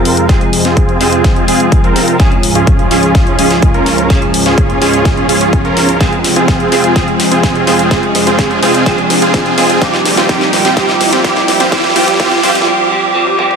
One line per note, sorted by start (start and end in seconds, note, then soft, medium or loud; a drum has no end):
0.00 2.16 F2 medium
0.00 2.16 C3 medium
0.00 0.26 F3 medium
0.00 0.26 G#3 medium
0.00 2.16 G#3 medium
0.00 0.26 C4 medium
0.00 0.27 C4 medium
0.00 0.26 F4 medium
0.00 0.27 G#4 medium
0.00 0.26 A#4 medium
0.00 riser medium
0.05 open hi-hat loud
0.17 closed hi-hat soft
0.28 0.97 F3 medium
0.28 0.98 G#3 medium
0.28 0.42 C4 medium
0.28 0.98 C4 medium
0.28 0.42 F4 medium
0.28 0.42 G#4 loud
0.28 0.98 G#4 medium
0.28 kick loud
0.28 snare medium
0.28 closed hi-hat medium
0.41 closed hi-hat soft
0.53 open hi-hat loud
0.65 0.98 C4 medium
0.65 0.98 F4 medium
0.65 0.98 G#4 medium
0.65 snare soft
0.65 closed hi-hat soft
0.77 kick loud
0.77 closed hi-hat soft
0.89 closed hi-hat soft
1.00 1.45 F3 medium
1.00 1.45 G#3 medium
1.00 1.45 C4 loud
1.00 1.45 C4 medium
1.00 1.45 F4 medium
1.00 1.45 G#4 loud
1.00 1.46 G#4 medium
1.00 snare medium
1.00 open hi-hat loud
1.13 closed hi-hat soft
1.24 kick loud
1.24 snare medium
1.24 closed hi-hat medium
1.36 closed hi-hat soft
1.47 2.16 F3 medium
1.47 2.17 G#3 medium
1.47 1.81 C4 medium
1.47 2.17 C4 medium
1.47 1.81 F4 medium
1.47 1.81 G#4 medium
1.47 2.17 G#4 medium
1.47 open hi-hat loud
1.60 closed hi-hat medium
1.72 kick loud
1.72 closed hi-hat medium
1.84 2.17 C4 medium
1.84 2.17 F4 medium
1.84 2.17 A#4 medium
1.84 closed hi-hat soft
1.96 snare medium
1.96 open hi-hat loud
2.08 closed hi-hat medium
2.18 5.97 C#2 medium
2.18 5.97 G#2 medium
2.18 2.88 F3 medium
2.18 5.97 F3 medium
2.18 2.88 G#3 medium
2.18 2.32 C#4 medium
2.18 2.88 C#4 medium
2.18 2.32 F4 medium
2.18 2.32 G#4 loud
2.18 2.89 G#4 medium
2.18 kick loud
2.18 snare medium
2.18 closed hi-hat soft
2.32 closed hi-hat soft
2.43 open hi-hat loud
2.55 2.88 C#4 medium
2.55 2.88 F4 medium
2.55 2.88 G#4 medium
2.55 closed hi-hat soft
2.67 kick loud
2.67 closed hi-hat soft
2.79 closed hi-hat soft
2.90 3.36 F3 medium
2.90 3.36 G#3 medium
2.90 3.36 C#4 loud
2.90 3.36 C#4 medium
2.90 3.36 F4 medium
2.90 3.36 G#4 loud
2.90 3.36 G#4 medium
2.90 snare medium
2.90 open hi-hat loud
3.03 closed hi-hat soft
3.15 kick loud
3.15 snare medium
3.15 closed hi-hat soft
3.27 closed hi-hat soft
3.38 4.07 F3 medium
3.38 4.07 G#3 medium
3.38 3.72 C#4 medium
3.38 4.08 C#4 medium
3.38 3.72 F4 medium
3.38 3.72 G#4 medium
3.38 4.08 G#4 medium
3.38 open hi-hat loud
3.51 snare medium
3.51 closed hi-hat soft
3.62 kick loud
3.62 closed hi-hat medium
3.74 4.07 C#4 medium
3.74 4.07 F4 medium
3.74 4.07 A#4 medium
3.74 closed hi-hat soft
3.86 snare medium
3.86 open hi-hat loud
3.98 closed hi-hat soft
4.09 4.78 F3 medium
4.09 4.78 G#3 medium
4.09 4.23 C#4 medium
4.09 4.79 C#4 medium
4.09 4.23 F4 medium
4.09 4.23 G#4 loud
4.09 4.79 G#4 medium
4.09 kick loud
4.09 snare medium
4.09 closed hi-hat soft
4.22 closed hi-hat soft
4.34 open hi-hat loud
4.46 4.79 C#4 medium
4.46 4.79 F4 medium
4.46 4.79 G#4 medium
4.46 snare medium
4.46 closed hi-hat soft
4.58 kick loud
4.58 closed hi-hat soft
4.70 closed hi-hat soft
4.81 5.26 F3 medium
4.81 5.26 G#3 medium
4.81 5.26 C#4 medium
4.81 5.26 F4 medium
4.81 5.26 G#4 loud
4.81 5.27 G#4 medium
4.81 snare medium
4.81 open hi-hat loud
4.94 closed hi-hat soft
5.05 kick loud
5.05 snare medium
5.05 closed hi-hat medium
5.17 closed hi-hat soft
5.28 5.97 F3 medium
5.28 5.98 G#3 medium
5.28 5.62 C#4 medium
5.28 5.98 C#4 medium
5.28 5.62 F4 medium
5.28 5.62 G#4 medium
5.28 5.98 G#4 medium
5.28 open hi-hat loud
5.41 closed hi-hat soft
5.53 kick loud
5.53 closed hi-hat soft
5.65 5.98 C#4 medium
5.65 5.98 F4 medium
5.65 5.98 A#4 medium
5.65 closed hi-hat soft
5.77 snare medium
5.77 open hi-hat loud
5.89 closed hi-hat soft
5.99 9.78 F2 medium
5.99 9.78 C3 medium
5.99 6.69 F3 medium
5.99 6.69 G#3 medium
5.99 9.78 G#3 medium
5.99 6.13 C4 medium
5.99 6.69 C4 medium
5.99 6.13 F4 medium
5.99 6.13 G#4 loud
5.99 6.70 G#4 medium
5.99 kick loud
5.99 snare medium
5.99 closed hi-hat soft
6.13 closed hi-hat soft
6.24 snare medium
6.24 open hi-hat loud
6.36 6.69 C4 medium
6.36 6.69 F4 medium
6.36 6.69 G#4 medium
6.36 closed hi-hat soft
6.48 kick loud
6.48 snare medium
6.48 closed hi-hat soft
6.60 closed hi-hat soft
6.71 6.93 F3 medium
6.71 6.94 G#3 medium
6.71 6.94 C4 medium
6.71 6.94 F4 medium
6.71 6.94 G#4 loud
6.71 6.94 G#4 medium
6.71 snare medium
6.71 open hi-hat loud
6.84 closed hi-hat soft
6.95 7.64 F3 medium
6.95 7.64 G#3 medium
6.95 7.08 C4 medium
6.95 7.65 C4 medium
6.95 7.08 F4 medium
6.95 7.08 G#4 loud
6.95 7.65 G#4 medium
6.95 kick loud
6.95 snare medium
6.95 closed hi-hat soft
7.08 closed hi-hat soft
7.20 snare medium
7.20 open hi-hat loud
7.31 7.64 C4 medium
7.31 7.64 F4 medium
7.31 7.64 G#4 medium
7.31 closed hi-hat medium
7.43 kick loud
7.43 snare medium
7.43 closed hi-hat medium
7.55 closed hi-hat soft
7.66 7.89 F3 medium
7.66 7.89 G#3 medium
7.66 7.89 C4 medium
7.66 7.89 F4 medium
7.66 7.89 G#4 loud
7.66 7.89 G#4 medium
7.66 snare medium
7.66 open hi-hat loud
7.79 closed hi-hat soft
7.90 8.59 F3 medium
7.90 8.59 G#3 medium
7.90 8.03 C4 medium
7.90 8.60 C4 medium
7.90 8.03 F4 medium
7.90 8.03 G#4 loud
7.90 8.60 G#4 medium
7.90 kick loud
7.90 snare medium
7.90 closed hi-hat medium
8.03 closed hi-hat soft
8.15 snare medium
8.15 open hi-hat loud
8.27 8.60 C4 medium
8.27 8.60 F4 medium
8.27 8.60 G#4 medium
8.27 closed hi-hat soft
8.39 kick loud
8.39 snare medium
8.39 closed hi-hat medium
8.51 closed hi-hat soft
8.62 8.84 F3 medium
8.62 8.84 G#3 medium
8.62 8.84 C4 loud
8.62 8.85 C4 medium
8.62 8.84 F4 medium
8.62 8.84 G#4 loud
8.62 8.85 G#4 medium
8.62 snare medium
8.62 open hi-hat loud
8.74 closed hi-hat soft
8.85 9.54 F3 medium
8.85 9.55 G#3 medium
8.85 8.99 C4 loud
8.85 9.55 C4 medium
8.85 8.99 F4 medium
8.85 8.99 G#4 loud
8.85 9.55 G#4 loud
8.85 kick loud
8.85 snare medium
8.85 closed hi-hat medium
8.98 closed hi-hat soft
9.10 snare medium
9.10 open hi-hat loud
9.22 9.55 C4 medium
9.22 9.55 F4 medium
9.22 9.55 G#4 medium
9.22 closed hi-hat medium
9.34 kick loud
9.34 snare medium
9.34 closed hi-hat medium
9.46 closed hi-hat soft
9.57 9.79 F3 medium
9.57 9.80 G#3 medium
9.57 9.80 C4 medium
9.57 9.80 F4 medium
9.57 9.80 G#4 loud
9.57 9.80 G#4 medium
9.57 snare medium
9.57 open hi-hat loud
9.70 closed hi-hat medium
9.80 12.64 D#2 medium
9.80 12.64 A#2 medium
9.80 10.27 F3 medium
9.80 10.27 G3 medium
9.80 12.64 G3 medium
9.80 9.94 C4 medium
9.80 10.27 C4 medium
9.80 9.94 F4 medium
9.80 9.94 G4 loud
9.80 10.28 G4 loud
9.80 kick loud
9.80 snare medium
9.80 closed hi-hat medium
9.94 snare medium
9.94 closed hi-hat soft
10.05 snare loud
10.05 open hi-hat loud
10.17 10.27 C4 medium
10.17 10.27 F4 medium
10.17 10.27 G4 medium
10.17 snare medium
10.17 closed hi-hat medium
10.28 10.74 F3 medium
10.28 10.75 G3 medium
10.28 10.42 C4 loud
10.28 10.75 C4 medium
10.28 10.42 F4 medium
10.28 10.42 G4 loud
10.28 10.75 G4 loud
10.28 kick loud
10.28 snare medium
10.28 closed hi-hat medium
10.41 snare medium
10.41 closed hi-hat soft
10.53 snare medium
10.53 open hi-hat loud
10.65 10.75 C4 medium
10.65 10.75 F4 medium
10.65 10.75 G4 medium
10.65 snare medium
10.65 closed hi-hat medium
10.76 11.22 F3 medium
10.76 11.22 G3 medium
10.76 10.89 C4 loud
10.76 11.23 C4 medium
10.76 10.89 F4 medium
10.76 10.89 G4 loud
10.76 11.23 G4 loud
10.76 kick loud
10.76 snare loud
10.76 closed hi-hat medium
10.89 snare medium
10.89 closed hi-hat soft
11.01 snare loud
11.01 open hi-hat loud
11.13 11.23 C4 medium
11.13 11.23 F4 medium
11.13 11.23 G4 medium
11.13 snare medium
11.13 closed hi-hat medium
11.23 11.70 F3 loud
11.23 11.70 G3 medium
11.23 11.37 C4 medium
11.23 11.70 C4 medium
11.23 11.37 F4 medium
11.23 11.37 G4 loud
11.23 11.71 G4 loud
11.23 kick loud
11.23 snare loud
11.23 closed hi-hat medium
11.36 snare medium
11.36 closed hi-hat soft
11.48 snare loud
11.48 open hi-hat loud
11.60 11.70 C4 medium
11.60 11.70 F4 medium
11.60 11.70 G4 medium
11.60 snare medium
11.60 closed hi-hat medium
11.71 11.93 F3 loud
11.71 11.94 G3 medium
11.71 11.85 C4 medium
11.71 11.94 C4 medium
11.71 11.85 F4 medium
11.71 11.85 G4 loud
11.71 11.95 G4 loud
11.71 kick loud
11.71 snare loud
11.71 closed hi-hat medium
11.78 snare medium
11.84 snare medium
11.84 closed hi-hat soft
11.90 snare medium
11.95 12.17 F3 loud
11.95 12.18 G3 medium
11.95 12.08 C4 loud
11.95 12.18 C4 medium
11.95 12.08 F4 medium
11.95 12.08 G4 loud
11.95 12.18 G4 loud
11.95 snare loud
11.95 open hi-hat loud
12.02 snare medium
12.08 snare medium
12.08 closed hi-hat medium
12.14 snare medium
12.18 12.41 F3 loud
12.18 12.41 G3 medium
12.18 12.32 C4 loud
12.18 12.42 C4 medium
12.18 12.32 F4 loud
12.18 12.32 G4 loud
12.18 12.42 G4 loud
12.18 kick loud
12.18 snare loud
12.18 closed hi-hat medium
12.26 snare medium
12.32 snare medium
12.32 closed hi-hat soft
12.37 snare medium
12.42 12.65 F3 medium
12.42 12.65 G3 medium
12.42 12.56 C4 loud
12.42 12.66 C4 medium
12.42 12.56 F4 medium
12.42 12.56 G4 loud
12.42 12.66 G4 loud
12.42 snare loud
12.42 open hi-hat loud
12.49 snare medium
12.55 snare medium
12.55 closed hi-hat medium
12.61 snare medium
12.66 12.88 F3 loud
12.66 12.89 G3 medium
12.66 12.89 C4 medium
12.66 12.90 G4 loud
12.90 13.12 F3 medium
12.90 13.13 G3 medium
12.90 13.13 C4 medium
12.90 13.13 G4 loud
13.14 13.36 F3 loud
13.14 13.37 G3 medium
13.14 13.37 C4 medium
13.14 13.37 G4 loud
13.27 high tom medium
13.37 13.56 F3 loud
13.37 13.56 G3 medium
13.37 13.56 C4 medium
13.37 13.56 G4 loud
13.37 mid tom medium
13.51 mid tom medium